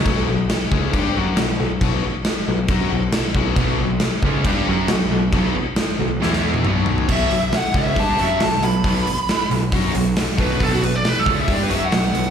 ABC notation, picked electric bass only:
X:1
M:4/4
L:1/8
Q:1/4=136
K:Bm
V:1 name="Picked electric bass" clef=bass
B,,, B,,, z C,, G,, F,, B,,, B,,, | B,,, z2 B,,, F,, B,,, z B,,, | B,,, B,,, z C,, G,, F,, B,,, B,,, | B,,, z2 B,,, E,,2 B,,,2 |
B,,, B,,, z C,, G,, F,, B,,, B,,, | B,,, z2 B,,, F,, B,,, z B,,, | B,,, B,,, z C,, G,, F,, B,,, B,,, |]